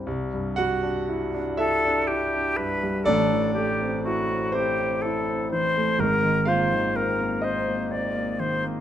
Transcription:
<<
  \new Staff \with { instrumentName = "Flute" } { \time 6/8 \key a \dorian \tempo 4. = 41 r4. a'8 g'8 b'8 | a'8 g'8 fis'8 g'8 a'8 c''8 | bes'8 c''8 bes'8 c''8 d''8 c''8 | }
  \new Staff \with { instrumentName = "Grand piano" } { \time 6/8 \key a \dorian r8 <fis' fis''>4 <e' e''>4. | <d' d''>4. <c' c''>4. | r8 <f' f''>4 <ees' ees''>4. | }
  \new Staff \with { instrumentName = "Grand piano" } { \time 6/8 \key a \dorian c,16 g,16 g16 d'16 e'16 d'8 d'16 e'16 d'16 g,16 g16 | <a,, a,>16 e16 a16 c'16 e'16 c'16 e'16 c'16 e'16 c'16 e16 a16 | <aes,, aes,>16 ees16 bes16 ees16 c'16 bes16 c'16 bes16 c'16 bes16 ees16 bes16 | }
>>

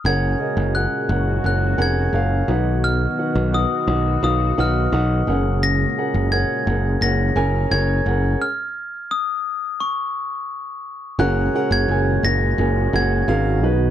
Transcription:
<<
  \new Staff \with { instrumentName = "Glockenspiel" } { \time 4/4 \key fis \major \tempo 4 = 86 gis'''4 fis'''4 fis'''8 gis'''4 r8 | eis'''4 dis'''4 dis'''8 eis'''4 r8 | ais'''4 gis'''4 ais'''4 gis'''4 | eis'''4 dis'''4 cis'''4. r8 |
fis'''8. gis'''8. ais'''4 gis'''4 r8 | }
  \new Staff \with { instrumentName = "Grand piano" } { \time 4/4 \key fis \major <cis' gis' ais' fis''>8 <cis' gis' ais' dis''>8 <cis' gis' ais' fis''>8 <cis' gis' ais' fis''>8 <cis' gis' ais' fis''>8 <cis' gis' ais' fis''>8 <cis' gis' ais' eis''>8 <dis' fis' b' fis''>8~ | <dis' fis' b' fis''>8 <dis' fis' b' fis''>8 <dis' fis' b' fis''>8 <dis' fis' b' fis''>8 <dis' fis' b' eis''>8 <dis' fis' b' fis''>8 <dis' fis' b' fis''>8 <cis' gis' ais' fis''>8~ | <cis' gis' ais' fis''>8 <cis' gis' ais' fis''>8 <cis' gis' ais' fis''>8 <cis' gis' ais' fis''>8 <cis' gis' ais' fis''>8 <cis' gis' ais' gis''>8 <cis' gis' ais' cis''>8 <cis' gis' ais' fis''>8 | r1 |
<cis' fis' gis' ais' fis''>8 <cis' fis' gis' ais' fis''>8 <cis' fis' gis' ais' gis''>8 <cis' fis' gis' ais' cis''>8 <cis' fis' gis' ais' gis''>8 <cis' fis' gis' ais' fis''>8 <cis' fis' gis' ais' eis''>8 <dis' fis' b'>8 | }
  \new Staff \with { instrumentName = "Grand piano" } { \clef bass \time 4/4 \key fis \major cis4. r2 <b, fis>8~ | <b, fis>4 r2 r8 cis8~ | cis4 r2. | r1 |
cis4. r2 <b, fis>8 | }
  \new Staff \with { instrumentName = "Analog synth pad" } { \clef bass \time 4/4 \key fis \major << { fis'2.~ fis'8 fis'8~ | fis'1~ | fis'1 | r1 |
fis'1 | } \\ { <ais, gis>2.~ <ais, gis>8 <dis b>8~ | <dis b>2.~ <dis b>8 <ais, gis>8~ | <ais, gis>1 | r1 |
<ais, gis>2.~ <ais, gis>8 <dis b>8 | } >> }
  \new Staff \with { instrumentName = "Picked electric bass" } { \clef bass \time 4/4 \key fis \major fis,,8 r16 fis,,8 r16 fis,,8 fis,,8 eis,,8 fis,,8 b,,8~ | b,,8 r16 b,,8 r16 b,,8 b,,8 b,,8 b,,8 fis,,8~ | fis,,8 r16 fis,,8 r16 fis,,8 fis,,8 fis,,8 fis,,8 fis,,8 | r1 |
fis,,8 r16 fis,,16 fis,,8 fis,,8 fis,,8 fis,,8 gis,,8 b,,8 | }
>>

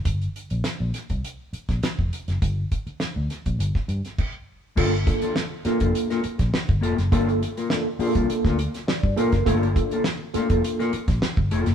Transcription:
<<
  \new Staff \with { instrumentName = "Clean electric guitar" } { \time 4/4 \key g \minor \tempo 4 = 102 r1 | r1 | <bes f' a'>16 r8 <bes f' a'>16 r8 <bes f' bes'>16 <bes f' a'>16 r16 <bes f' bes'>16 r4 <bes f' a'>16 r16 | <bes f' a'>16 r8 <bes f' bes'>16 r8 <bes f' bes'>16 <bes f' a'>16 r16 <bes f' bes'>16 r4 <bes f' bes'>16 r16 |
<bes f' a'>16 r8 <bes f' a'>16 r8 <bes f' bes'>16 <bes f' a'>16 r16 <bes f' bes'>16 r4 <bes f' a'>16 r16 | }
  \new Staff \with { instrumentName = "Tine electric piano" } { \time 4/4 \key g \minor << { r1 | r1 | r1 | r2. d''8 bes'8 |
r1 | } \\ { r1 | r1 | <bes d' f' a'>16 r16 <bes d' f' a'>8 r8 <bes d' f' a'>4 r4. | <bes d' f' a'>8 r8 <bes d' f' a'>16 r16 <bes d' f' aes' a'>4 r4 <bes d' f' a'>16 r16 |
<bes d' f' a'>16 r16 <bes d' f' a'>8 r8 <a bes d' f' a'>4 r4. | } >> }
  \new Staff \with { instrumentName = "Fingered electric bass" } { \clef bass \time 4/4 \key g \minor g,,8 r16 bes,,16 r16 bes,,16 r16 c,16 r8. bes,,16 r16 f,,16 r16 fis,,16 | g,,8 r8. d,16 r16 bes,,16 g,,16 r16 g,16 r4 r16 | g,,8. r4 f,,16 r8. bes,,16 r16 g,,16 f,,16 fis,,16 | g,,8. r4 c,16 r16 d,8 r8 g,16 r16 fis,,16 |
g,,8. r4 f,,16 r8. bes,,16 r16 g,,16 f,,16 fis,,16 | }
  \new DrumStaff \with { instrumentName = "Drums" } \drummode { \time 4/4 <hh bd>16 hh16 hh16 hh16 <hh sn>8 <hh sn>16 <hh bd>16 hh8 hh16 <hh bd sn>16 <hh sn>16 bd16 hh16 <hh sn>16 | <hh bd>8 <hh bd>16 hh16 <hh sn>8 <hh sn>16 <hh bd>16 hh16 <bd sn>16 hh16 <hh sn>16 <cymc bd>4 | <cymc bd>16 hh16 <hh bd>16 hh16 sn8 <hh sn>16 <hh bd>16 hh16 <hh sn>16 hh16 <hh bd sn>16 sn16 <hh bd>16 hh16 <hh sn>16 | <hh bd>16 hh16 hh16 hh16 sn8 hho16 <hh bd>16 hh16 <hh bd sn>16 hh16 <hh sn>16 sn16 bd16 hh16 <hh bd sn>16 |
<hh bd>16 hh16 <hh bd>16 hh16 sn8 <hh sn>16 <hh bd>16 hh16 <hh sn>16 hh16 <hh bd sn>16 sn16 bd16 hh16 <hh sn>16 | }
>>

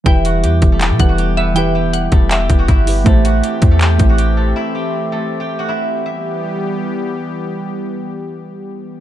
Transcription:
<<
  \new Staff \with { instrumentName = "Synth pluck" } { \time 4/4 \key e \minor \tempo 4 = 160 g''2~ g''8 fis''4 e''8 | g''4 fis''4 e''2 | r1 | r1 |
r1 | r1 | }
  \new Staff \with { instrumentName = "Guzheng" } { \time 4/4 \key e \minor <e' e''>8 <fis' fis''>8 <g' g''>8. <a a'>16 <g' g''>8. <fis' fis''>16 <g' g''>8 <b b'>8 | <e' e''>8 <g' g''>4 <a a'>8. <g' g''>8 <fis' fis''>16 <e' e''>4 | <a a'>8 <fis' fis''>8 <g' g''>8. <a a'>16 <g' g''>8. <fis' fis''>16 <g' g''>8 <a a'>8 | <e' e''>8 <g' g''>4 <a a'>8. <g' g''>8 <fis' fis''>16 <e' e''>4 |
e''2. r4 | r1 | }
  \new Staff \with { instrumentName = "Synth keys" } { \time 4/4 \key e \minor <e e' g' b'>4 r8 <e e' g' b'>8. r16 <e e' g' b'>4 r8 | <e e' g' b'>4. r4 <e e' g' b'>8. r16 <e e' g' b'>8 | <a e' g' c''>4 r8 <a e' g' c''>8. r16 <a e' g' c''>4 r8 | r1 |
r1 | r1 | }
  \new Staff \with { instrumentName = "Analog synth pad" } { \time 4/4 \key e \minor << { g'1~ | g'1~ | g'1~ | g'1 |
<e g b g'>1~ | <e g b g'>1 | } \\ { <e g b>1~ | <e g b>1 | <e a c'>1~ | <e a c'>1 |
r1 | r1 | } >> }
  \new Staff \with { instrumentName = "808-style bass" } { \clef bass \time 4/4 \key e \minor e,,4 e,8 e,,8. b,16 e,,4.~ | e,,4. e,,4 e,,8 g,,4 | a,,4 r8 e,4 a,,4. | r1 |
r1 | r1 | }
  \new DrumStaff \with { instrumentName = "Drums" } \drummode { \time 4/4 <hh bd>8 hh8 hh8 <hh bd>8 <hc hh>8 <hh bd>8 hh4 | hh4 hh8 <hh bd>8 <hc hh>8 <hh bd>8 <hh bd>8 hho8 | <hh bd>8 hh8 hh8 <hh bd>8 <hc hh>8 <hh bd>8 hh4 | r4 r4 r4 r4 |
r4 r4 r4 r4 | r4 r4 r4 r4 | }
>>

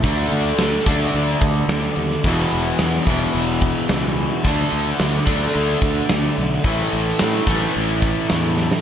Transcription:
<<
  \new Staff \with { instrumentName = "Overdriven electric guitar" } { \clef bass \time 4/4 \key d \major \tempo 4 = 109 <d a d'>4. <d a d'>2~ <d a d'>8 | <e, b, e>4. <e, b, e>2~ <e, b, e>8 | <d a d'>4. <d a d'>2~ <d a d'>8 | <a, e a>4. <a, e a>2~ <a, e a>8 | }
  \new Staff \with { instrumentName = "Fingered electric bass" } { \clef bass \time 4/4 \key d \major d,8 d,8 d,8 d,8 d,8 d,8 d,8 dis,8 | e,,8 e,,8 e,8 e,,8 e,,4 cis,4 | d,8 d,8 d,8 d,8 d,8 d,8 d,8 b,,8 | a,,8 a,,8 a,8 a,,8 a,,4 e,4 | }
  \new DrumStaff \with { instrumentName = "Drums" } \drummode { \time 4/4 <cymc bd>8 cymc8 <cymc sn>8 <cymc bd>8 cymc8 <cymc bd>8 <cymc sn>8 cymc16 sn16 | <cymc bd>8 cymc8 <cymc sn>8 <cymc bd>8 cymc8 <cymc bd>8 <cymc sn>8 cymc8 | <cymc bd>8 cymc8 <cymc sn>8 <cymc bd>8 cymc8 <cymc bd>8 <cymc sn>8 cymc8 | <cymc bd>8 cymc8 <cymc sn>8 <cymc bd>8 cymc8 <cymc bd>8 <cymc sn>8 sn16 sn16 | }
>>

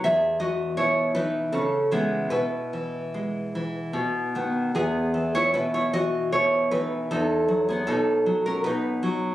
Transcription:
\new Staff \with { instrumentName = "Nylon-string guitar" } { \time 3/4 \key e \major \tempo 4 = 77 << { <gis' e''>8 <fis' dis''>8 <e' cis''>8 <dis' b'>8 <cis' a'>8 <b gis'>8 | <e' b'>2~ <e' b'>8 r8 | <b gis'>8. <e' cis''>16 <e' b'>16 <e' cis''>16 <fis' dis''>8 <e' cis''>8 <dis' b'>8 | <dis' a'>8. <b gis'>16 <dis' a'>8. <cis' ais'>16 <dis' b'>4 | } \\ { e,8 e8 b,8 e8 cis8 <e gis>8 | b,8 e8 gis8 e8 b,8 <dis b>8 | e,8 e8 b,8 e8 b,8 e8 | e,8 fis8 b,8 fis8 b,8 fis8 | } >> }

